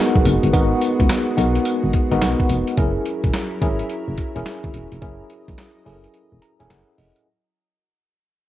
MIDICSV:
0, 0, Header, 1, 5, 480
1, 0, Start_track
1, 0, Tempo, 560748
1, 457, Time_signature, 4, 2, 24, 8
1, 7265, End_track
2, 0, Start_track
2, 0, Title_t, "Tine electric piano"
2, 0, Program_c, 0, 4
2, 0, Control_c, 0, 64, 127
2, 0, Note_on_c, 0, 59, 89
2, 0, Note_on_c, 0, 63, 88
2, 0, Note_on_c, 0, 66, 87
2, 0, Note_on_c, 0, 68, 77
2, 0, Note_on_c, 0, 70, 95
2, 320, Note_off_c, 0, 59, 0
2, 322, Note_off_c, 0, 63, 0
2, 324, Note_off_c, 0, 66, 0
2, 353, Note_off_c, 0, 70, 0
2, 453, Note_on_c, 0, 59, 98
2, 457, Note_on_c, 0, 63, 81
2, 460, Note_on_c, 0, 66, 81
2, 463, Note_on_c, 0, 70, 101
2, 999, Note_off_c, 0, 59, 0
2, 1001, Note_off_c, 0, 63, 0
2, 1003, Note_off_c, 0, 66, 0
2, 1004, Note_off_c, 0, 70, 0
2, 1173, Note_on_c, 0, 59, 84
2, 1177, Note_on_c, 0, 63, 81
2, 1180, Note_on_c, 0, 66, 78
2, 1184, Note_on_c, 0, 70, 90
2, 1628, Note_off_c, 0, 59, 0
2, 1630, Note_off_c, 0, 63, 0
2, 1631, Note_off_c, 0, 66, 0
2, 1633, Note_off_c, 0, 70, 0
2, 1809, Note_on_c, 0, 59, 95
2, 1812, Note_on_c, 0, 63, 82
2, 1815, Note_on_c, 0, 66, 83
2, 1818, Note_on_c, 0, 70, 98
2, 2241, Note_off_c, 0, 59, 0
2, 2242, Note_off_c, 0, 63, 0
2, 2244, Note_off_c, 0, 66, 0
2, 2246, Note_off_c, 0, 70, 0
2, 2375, Note_on_c, 0, 61, 91
2, 2378, Note_on_c, 0, 64, 85
2, 2382, Note_off_c, 0, 68, 0
2, 2382, Note_on_c, 0, 68, 82
2, 2385, Note_on_c, 0, 70, 103
2, 2386, Control_c, 0, 64, 0
2, 2557, Control_c, 0, 64, 127
2, 2920, Note_off_c, 0, 61, 0
2, 2922, Note_off_c, 0, 64, 0
2, 2924, Note_off_c, 0, 68, 0
2, 2925, Note_off_c, 0, 70, 0
2, 3094, Note_on_c, 0, 61, 91
2, 3098, Note_on_c, 0, 64, 80
2, 3100, Note_on_c, 0, 68, 78
2, 3105, Note_on_c, 0, 70, 90
2, 3548, Note_off_c, 0, 61, 0
2, 3550, Note_off_c, 0, 64, 0
2, 3551, Note_off_c, 0, 68, 0
2, 3554, Note_off_c, 0, 70, 0
2, 3727, Note_on_c, 0, 61, 89
2, 3731, Note_on_c, 0, 64, 82
2, 3735, Note_on_c, 0, 68, 82
2, 3737, Note_on_c, 0, 70, 101
2, 4160, Note_off_c, 0, 61, 0
2, 4162, Note_off_c, 0, 64, 0
2, 4164, Note_off_c, 0, 68, 0
2, 4165, Note_off_c, 0, 70, 0
2, 4294, Note_on_c, 0, 61, 90
2, 4297, Note_on_c, 0, 64, 82
2, 4300, Note_on_c, 0, 68, 86
2, 4304, Note_on_c, 0, 70, 102
2, 4840, Note_off_c, 0, 61, 0
2, 4842, Note_off_c, 0, 64, 0
2, 4843, Note_off_c, 0, 68, 0
2, 4845, Note_off_c, 0, 70, 0
2, 5012, Note_on_c, 0, 61, 89
2, 5015, Note_on_c, 0, 64, 75
2, 5019, Note_on_c, 0, 68, 76
2, 5022, Note_on_c, 0, 69, 78
2, 5077, Note_on_c, 0, 70, 90
2, 5091, Note_off_c, 0, 69, 0
2, 5467, Note_off_c, 0, 61, 0
2, 5469, Note_off_c, 0, 64, 0
2, 5471, Note_off_c, 0, 68, 0
2, 5497, Note_on_c, 0, 82, 72
2, 5500, Note_off_c, 0, 70, 0
2, 5640, Note_off_c, 0, 82, 0
2, 5647, Note_on_c, 0, 61, 91
2, 5651, Note_on_c, 0, 64, 85
2, 5652, Note_on_c, 0, 80, 73
2, 5654, Note_on_c, 0, 68, 78
2, 5657, Note_on_c, 0, 69, 78
2, 5694, Note_off_c, 0, 69, 0
2, 5713, Note_on_c, 0, 70, 91
2, 5732, Note_off_c, 0, 80, 0
2, 5736, Note_on_c, 0, 78, 72
2, 5960, Note_off_c, 0, 78, 0
2, 5978, Note_on_c, 0, 75, 72
2, 6080, Note_off_c, 0, 61, 0
2, 6082, Note_off_c, 0, 64, 0
2, 6083, Note_off_c, 0, 68, 0
2, 6113, Note_off_c, 0, 70, 0
2, 6201, Note_off_c, 0, 75, 0
2, 6229, Control_c, 0, 64, 0
2, 7265, End_track
3, 0, Start_track
3, 0, Title_t, "Analog synth pad"
3, 0, Program_c, 1, 89
3, 0, Note_on_c, 1, 56, 84
3, 0, Note_on_c, 1, 59, 92
3, 0, Note_on_c, 1, 66, 70
3, 2344, Note_off_c, 1, 56, 0
3, 2344, Note_off_c, 1, 59, 0
3, 2344, Note_off_c, 1, 66, 0
3, 2379, Note_on_c, 1, 54, 84
3, 2379, Note_on_c, 1, 64, 69
3, 2380, Note_on_c, 1, 70, 84
3, 4279, Note_off_c, 1, 64, 0
3, 4300, Note_on_c, 1, 75, 74
3, 6184, Note_off_c, 1, 54, 0
3, 6184, Note_off_c, 1, 70, 0
3, 6199, Note_off_c, 1, 75, 0
3, 7265, End_track
4, 0, Start_track
4, 0, Title_t, "FM bass"
4, 0, Program_c, 2, 39
4, 133, Note_on_c, 2, 35, 83
4, 196, Note_off_c, 2, 35, 0
4, 217, Note_on_c, 2, 30, 108
4, 331, Note_off_c, 2, 30, 0
4, 371, Note_on_c, 2, 31, 99
4, 435, Note_off_c, 2, 31, 0
4, 458, Note_on_c, 2, 32, 108
4, 635, Note_off_c, 2, 32, 0
4, 853, Note_on_c, 2, 37, 96
4, 916, Note_off_c, 2, 37, 0
4, 1178, Note_on_c, 2, 35, 103
4, 1356, Note_off_c, 2, 35, 0
4, 1572, Note_on_c, 2, 32, 90
4, 1635, Note_off_c, 2, 32, 0
4, 1811, Note_on_c, 2, 32, 94
4, 1875, Note_off_c, 2, 32, 0
4, 1898, Note_on_c, 2, 35, 97
4, 2011, Note_off_c, 2, 35, 0
4, 2137, Note_on_c, 2, 29, 100
4, 2251, Note_off_c, 2, 29, 0
4, 2377, Note_on_c, 2, 30, 117
4, 2554, Note_off_c, 2, 30, 0
4, 2772, Note_on_c, 2, 28, 96
4, 2835, Note_off_c, 2, 28, 0
4, 3096, Note_on_c, 2, 32, 93
4, 3274, Note_off_c, 2, 32, 0
4, 3492, Note_on_c, 2, 30, 100
4, 3555, Note_off_c, 2, 30, 0
4, 3732, Note_on_c, 2, 28, 97
4, 3796, Note_off_c, 2, 28, 0
4, 3972, Note_on_c, 2, 32, 79
4, 4036, Note_off_c, 2, 32, 0
4, 4059, Note_on_c, 2, 28, 88
4, 4172, Note_off_c, 2, 28, 0
4, 4214, Note_on_c, 2, 29, 95
4, 4276, Note_off_c, 2, 29, 0
4, 4298, Note_on_c, 2, 30, 119
4, 4475, Note_off_c, 2, 30, 0
4, 4694, Note_on_c, 2, 34, 87
4, 4757, Note_off_c, 2, 34, 0
4, 5018, Note_on_c, 2, 30, 85
4, 5196, Note_off_c, 2, 30, 0
4, 5412, Note_on_c, 2, 28, 100
4, 5476, Note_off_c, 2, 28, 0
4, 5653, Note_on_c, 2, 28, 94
4, 5716, Note_off_c, 2, 28, 0
4, 5740, Note_on_c, 2, 30, 93
4, 5853, Note_off_c, 2, 30, 0
4, 5979, Note_on_c, 2, 29, 89
4, 6092, Note_off_c, 2, 29, 0
4, 7265, End_track
5, 0, Start_track
5, 0, Title_t, "Drums"
5, 132, Note_on_c, 9, 36, 85
5, 217, Note_on_c, 9, 42, 78
5, 218, Note_off_c, 9, 36, 0
5, 218, Note_on_c, 9, 54, 66
5, 303, Note_off_c, 9, 42, 0
5, 303, Note_off_c, 9, 54, 0
5, 370, Note_on_c, 9, 42, 59
5, 456, Note_off_c, 9, 42, 0
5, 458, Note_on_c, 9, 36, 107
5, 458, Note_on_c, 9, 42, 84
5, 458, Note_on_c, 9, 54, 70
5, 543, Note_off_c, 9, 36, 0
5, 544, Note_off_c, 9, 42, 0
5, 544, Note_off_c, 9, 54, 0
5, 695, Note_on_c, 9, 54, 65
5, 696, Note_on_c, 9, 42, 73
5, 781, Note_off_c, 9, 54, 0
5, 782, Note_off_c, 9, 42, 0
5, 853, Note_on_c, 9, 36, 91
5, 853, Note_on_c, 9, 42, 53
5, 936, Note_off_c, 9, 42, 0
5, 936, Note_on_c, 9, 38, 109
5, 936, Note_on_c, 9, 42, 73
5, 937, Note_on_c, 9, 54, 97
5, 938, Note_off_c, 9, 36, 0
5, 943, Note_on_c, 9, 39, 87
5, 1021, Note_off_c, 9, 42, 0
5, 1022, Note_off_c, 9, 38, 0
5, 1023, Note_off_c, 9, 54, 0
5, 1029, Note_off_c, 9, 39, 0
5, 1178, Note_on_c, 9, 54, 66
5, 1180, Note_on_c, 9, 42, 68
5, 1264, Note_off_c, 9, 54, 0
5, 1266, Note_off_c, 9, 42, 0
5, 1329, Note_on_c, 9, 42, 57
5, 1415, Note_off_c, 9, 42, 0
5, 1415, Note_on_c, 9, 42, 84
5, 1417, Note_on_c, 9, 54, 62
5, 1500, Note_off_c, 9, 42, 0
5, 1503, Note_off_c, 9, 54, 0
5, 1655, Note_on_c, 9, 42, 82
5, 1658, Note_on_c, 9, 36, 97
5, 1741, Note_off_c, 9, 42, 0
5, 1743, Note_off_c, 9, 36, 0
5, 1810, Note_on_c, 9, 42, 53
5, 1896, Note_off_c, 9, 42, 0
5, 1896, Note_on_c, 9, 38, 107
5, 1897, Note_on_c, 9, 54, 95
5, 1898, Note_on_c, 9, 42, 74
5, 1903, Note_on_c, 9, 39, 80
5, 1982, Note_off_c, 9, 38, 0
5, 1983, Note_off_c, 9, 42, 0
5, 1983, Note_off_c, 9, 54, 0
5, 1989, Note_off_c, 9, 39, 0
5, 2052, Note_on_c, 9, 36, 91
5, 2135, Note_on_c, 9, 42, 83
5, 2136, Note_on_c, 9, 54, 63
5, 2137, Note_off_c, 9, 36, 0
5, 2221, Note_off_c, 9, 42, 0
5, 2221, Note_off_c, 9, 54, 0
5, 2289, Note_on_c, 9, 42, 63
5, 2374, Note_off_c, 9, 42, 0
5, 2375, Note_on_c, 9, 42, 76
5, 2376, Note_on_c, 9, 36, 103
5, 2460, Note_off_c, 9, 42, 0
5, 2462, Note_off_c, 9, 36, 0
5, 2615, Note_on_c, 9, 42, 72
5, 2700, Note_off_c, 9, 42, 0
5, 2771, Note_on_c, 9, 42, 50
5, 2772, Note_on_c, 9, 36, 99
5, 2854, Note_off_c, 9, 42, 0
5, 2854, Note_on_c, 9, 42, 79
5, 2855, Note_on_c, 9, 38, 116
5, 2857, Note_off_c, 9, 36, 0
5, 2862, Note_on_c, 9, 39, 84
5, 2940, Note_off_c, 9, 38, 0
5, 2940, Note_off_c, 9, 42, 0
5, 2948, Note_off_c, 9, 39, 0
5, 3096, Note_on_c, 9, 36, 93
5, 3097, Note_on_c, 9, 42, 64
5, 3181, Note_off_c, 9, 36, 0
5, 3183, Note_off_c, 9, 42, 0
5, 3246, Note_on_c, 9, 42, 57
5, 3332, Note_off_c, 9, 42, 0
5, 3333, Note_on_c, 9, 42, 78
5, 3419, Note_off_c, 9, 42, 0
5, 3574, Note_on_c, 9, 42, 80
5, 3577, Note_on_c, 9, 36, 91
5, 3660, Note_off_c, 9, 42, 0
5, 3663, Note_off_c, 9, 36, 0
5, 3730, Note_on_c, 9, 42, 54
5, 3815, Note_on_c, 9, 38, 109
5, 3816, Note_off_c, 9, 42, 0
5, 3816, Note_on_c, 9, 42, 76
5, 3822, Note_on_c, 9, 39, 86
5, 3901, Note_off_c, 9, 38, 0
5, 3902, Note_off_c, 9, 42, 0
5, 3908, Note_off_c, 9, 39, 0
5, 3971, Note_on_c, 9, 36, 96
5, 4056, Note_on_c, 9, 42, 84
5, 4057, Note_off_c, 9, 36, 0
5, 4142, Note_off_c, 9, 42, 0
5, 4209, Note_on_c, 9, 42, 59
5, 4294, Note_off_c, 9, 42, 0
5, 4296, Note_on_c, 9, 42, 80
5, 4297, Note_on_c, 9, 36, 116
5, 4382, Note_off_c, 9, 42, 0
5, 4383, Note_off_c, 9, 36, 0
5, 4535, Note_on_c, 9, 42, 75
5, 4621, Note_off_c, 9, 42, 0
5, 4692, Note_on_c, 9, 42, 54
5, 4693, Note_on_c, 9, 36, 98
5, 4776, Note_off_c, 9, 42, 0
5, 4776, Note_on_c, 9, 38, 106
5, 4776, Note_on_c, 9, 42, 77
5, 4778, Note_off_c, 9, 36, 0
5, 4783, Note_on_c, 9, 39, 86
5, 4861, Note_off_c, 9, 42, 0
5, 4862, Note_off_c, 9, 38, 0
5, 4869, Note_off_c, 9, 39, 0
5, 5019, Note_on_c, 9, 46, 64
5, 5104, Note_off_c, 9, 46, 0
5, 5169, Note_on_c, 9, 42, 53
5, 5254, Note_off_c, 9, 42, 0
5, 5254, Note_on_c, 9, 42, 76
5, 5340, Note_off_c, 9, 42, 0
5, 5495, Note_on_c, 9, 42, 85
5, 5581, Note_off_c, 9, 42, 0
5, 5651, Note_on_c, 9, 42, 51
5, 5736, Note_off_c, 9, 42, 0
5, 5737, Note_on_c, 9, 38, 108
5, 5738, Note_on_c, 9, 42, 72
5, 5744, Note_on_c, 9, 39, 88
5, 5822, Note_off_c, 9, 38, 0
5, 5824, Note_off_c, 9, 42, 0
5, 5830, Note_off_c, 9, 39, 0
5, 5977, Note_on_c, 9, 46, 83
5, 6062, Note_off_c, 9, 46, 0
5, 6129, Note_on_c, 9, 42, 53
5, 6215, Note_off_c, 9, 42, 0
5, 7265, End_track
0, 0, End_of_file